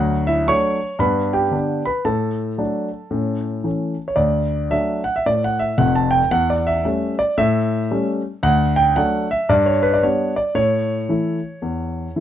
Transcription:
grand piano
Already playing: D2 F#3 F#4 F#5
0.27 E4 E5
0.48 F#3 A3 D4 C#5 C#6
0.99 G2 B3 B4 B5
1.33 G4 G5
1.51 D3 B3 D4
1.85 B4 B5
2.05 A2 A4 A5
2.58 F#3 A3 D4
3.11 A2 C#4
3.64 E3 A3 C#4
4.08 C#5
4.16 D2 D5
4.70 F#3 A3 D4 E5
5.04 F#5
5.16 E5
5.26 A2 D5
5.44 F#5
5.59 E5
5.78 F1 F2 F#5
5.95 A5
6.11 G5
6.31 E2 F#5
6.50 D5
6.67 E5
6.85 G3 A3 C#4
7.19 D5
7.37 A2 E5
7.91 G3 A3 C#4
8.43 D2 F#5
8.76 G5
8.96 F#3 A3 D4 F#5
9.31 E5
9.49 G2 D5
9.66 C#5
9.83 B4
9.94 D5
10.03 G3 B3 D4 C#5
10.36 D5
10.55 A2 C#5
11.09 E3 A3 E4
11.62 E2
12.16 E3 A3 E4

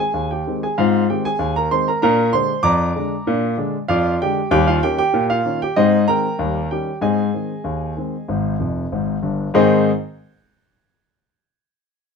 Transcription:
grand piano
0.00 G#4 G#5
0.14 D#2
0.31 G4 G5
0.47 D#3 G#3 C4
0.63 G#4 G#5
0.78 G#2 C4 F4 C5 F5
1.10 D#3 G#3 C4 G4 G5
1.25 G#4 G#5
1.39 D#2
1.56 A#4 A#5
1.71 D#3 G#3 C4 C5 C6
1.88 A#4 A#5
2.02 A#2 D4 A#4 F5 A#5
2.33 D3 G#3 D4 C5 C6
2.63 F2 D5 A#5 D6
2.96 D3 G#3 D4
3.27 A#2 D4
3.58 D3 G#3 D4
3.88 F2 F4 D5 F5
4.22 D3 G#3 D4 G4 G5
4.51 D#2 G3 G4 G5
4.67 F4 F5
4.83 D#3 A#3 C#4 G4 G5
4.98 G4 G5
5.14 A#2
5.30 F4 F5
5.45 D#3 A#3 C#4
5.62 G4 G5
5.76 G#2 C4 D#4 C5 D#5
6.08 D#3 G#3 C4 A#4 G5 A#5
6.39 D#2 G3
6.71 D#3 G3 C#4 G4 G5
7.01 G#2 C4 G#4 D#5 G#5
7.34 D#3 G#3 C4
7.64 D#2
7.96 D#3 G#3 C4
8.29 G#1 G#2
8.60 F1 F2
8.92 G#1 G#2
9.22 G1 G2
9.54 G#2 D#3 C4 D#4 G#4 C5

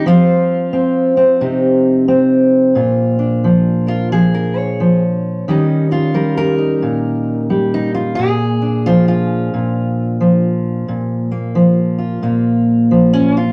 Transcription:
steel-string acoustic guitar
0.06 F3 C4 F4
0.73 C4
1.17 C4
1.41 C3 D#4
2.08 C4
2.75 A#2 F4
3.19 D4
3.44 F3
3.87 F4 A#4
4.12 F3 G#4
4.34 A#4
4.57 C#5
4.80 F3
5.48 D#3 G3 C#4 D#4
5.91 C#4 F4
6.14 G3 A#4
6.37 A#4
6.58 D#4
6.82 A#2
7.50 G3
7.74 D#4
7.94 F4
8.15 A#2 G#4
8.62 D4
8.86 F3 F4
9.08 F4
9.54 A#2
10.20 F3
10.88 A#2
11.31 A#3
11.55 F3
11.98 F4
12.22 A#2 A#3
12.91 F3
13.13 C#4
13.37 F4

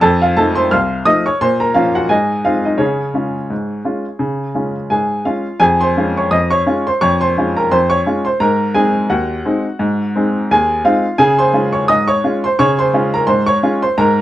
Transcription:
upright piano
0.01 F2 A4 A5
0.22 F4 F5
0.37 F3 A3 D#4 A4 A5
0.55 C5 C6
0.71 C2 F5 C6 F6
1.05 F3 A3 D#4 D#5 D#6
1.26 C#5 C#6
1.41 A#2 C5 C6
1.60 A#4 A#5
1.74 F3 A#3 C#4 F4 F5
1.95 F#4 F#5
2.09 G#2 G#4 D#5 G#5
2.45 G#3 C4 D#4 F4 F5
2.65 D#4 D#5
2.78 C#3 C#4 G#4 C#5
3.14 G#3 C#4 F4
3.50 G#2
3.85 G#3 C#4 F4
4.19 C#3
4.54 G#3 C#4 F4
4.90 G#2 G#4 G#5
5.25 G#3 C#4 F4 F5
5.59 F2 G#4 G#5
5.80 C5 C6
5.97 G#3 C#4 F4
6.17 C#5 C#6
6.31 F2 D#5 D#6
6.50 C#5 C#6
6.66 G#3 C#4 F4
6.87 C5 C6
7.01 F2 C#5 C#6
7.21 C5 C6
7.38 G#3 C#4 F4
7.57 A#4 A#5
7.71 F2 C5 C6
7.90 C#5 C#6
8.06 G#3 C#4 F4
8.25 C5 C6
8.40 G#2 A#4 A#5
8.74 G#3 C4 D#4 G#4 G#5
9.09 D#2 F#4 F#5
9.45 G#3 C4 D#4
9.80 G#2
10.16 G#3 C4 D#4
10.51 D#2 G#4 G#5
10.85 G#3 C4 D#4 F4 F5
11.18 C#3 G#4 G#5
11.39 C5 C6
11.53 G#3 C#4 F4
11.73 C#5 C#6
11.88 G#2 D#5 D#6
12.08 C#5 C#6
12.24 G#3 C#4 F4
12.44 C5 C6
12.59 C#3 C#5 C#6
12.79 C5 C6
12.94 G#3 C#4 F4
13.14 A#4 A#5
13.27 G#2 C5 C6
13.47 C#5 C#6
13.63 G#3 C#4 F4
13.82 C5 C6
13.98 G#2 A#4 A#5

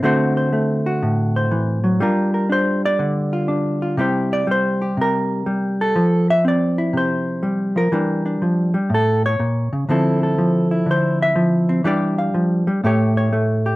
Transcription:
hollow-body jazz guitar
0.03 D3 A3 C4 F#4 C5
0.37 C5
0.53 A3
0.86 F#4
1.02 A2
1.36 C5
1.51 E3
1.84 F#3
2.00 G3 D4 F4 A#4
2.34 A#4
2.50 D4 C5
2.85 D5
2.99 D3
3.33 F4
3.48 D4
3.82 F4
3.97 C3 G3 E4 G4 C5
4.33 D5
4.47 G3
4.51 C5
4.82 G4
4.97 C3
5.01 A#4
5.46 G3
5.81 A4
5.96 F3
6.30 E5
6.45 C4 D5
6.78 E4
6.93 C3
6.97 C5
7.43 G3
7.76 F3 A#4
7.92 E3 G3 D4
8.26 D4
8.42 F3
8.74 G3
8.90 A2
8.94 A4
9.26 C#5
9.39 A#2
9.73 C#3
9.89 D3 F3 C4 E4 A4
10.23 A4
10.38 F3
10.71 E4
10.86 D3
10.91 C5
11.22 E5
11.36 F3
11.69 C4
11.84 E3 G3 D4 G4 D5
12.18 F5
12.34 F3
12.67 G3
12.84 A2 A3 G4 C#5
13.17 C#5
13.33 A3
13.66 G4

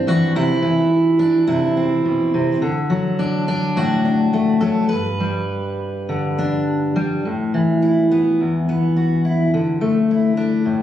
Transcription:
steel-string acoustic guitar
Already playing: G2 C4 D4
0.07 E3 F#4
0.36 C3 E4
0.62 E3
1.19 D4
1.47 C3 E4
1.77 C4
2.05 B2
2.34 C3
2.62 D3
2.90 F#3
3.19 D4
3.48 D4
3.76 A2 F#4
4.05 D4
4.33 A3
4.61 F#3 A4
4.89 G2 B4
5.20 G3
6.09 D3
6.39 D4
6.96 G3
7.25 A2
7.54 E3
7.82 E4
8.11 B3
8.40 E2
8.69 B3
8.96 F#4
9.25 E4
9.54 D3
9.81 A3
10.11 E4
10.37 D4
10.65 A2

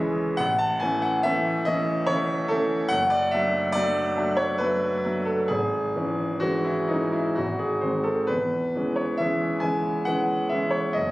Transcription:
grand piano
Already playing: E3 G#3 C#4 B4 C#5 D#5 E5
0.37 A1 F#5
0.58 A5
0.80 E3 A3 C#4 G#5
1.02 F#5
1.23 E3 A3 C#4 E5
1.65 E3 A3 C#4 D#5
2.06 E3 A3 C#4 C#5
2.48 E3 A3 C#4 A4
2.89 F#1 F#5
3.10 D5
3.31 F#3 A3 D4 E5
3.72 F#3 A3 D4 D5
4.17 F#3 A3 D4
4.37 C#5
4.58 F#3 A3 D4 B4
5.05 F#3 A3 D4
5.25 A4
5.48 G#1 G#4
5.96 E3 G#3 C#4
6.40 E3 G#3 C#4 F#4
6.64 E4
6.88 E3 G#3 C#4 D#4
7.12 E4
7.36 G#1 F#4
7.59 G#4
7.81 D#3 G#3 C4 C5
8.04 A4
8.27 E2 B4
8.76 E3 G#3 C#4
8.96 C#5
9.17 E3 G#3 C#4 E5
9.60 E3 G#3 C#4 G#5
10.05 E3 G#3 C#4 F#5
10.49 E3 G#3 C#4 E5
10.71 C#5
10.93 F#1 D#5

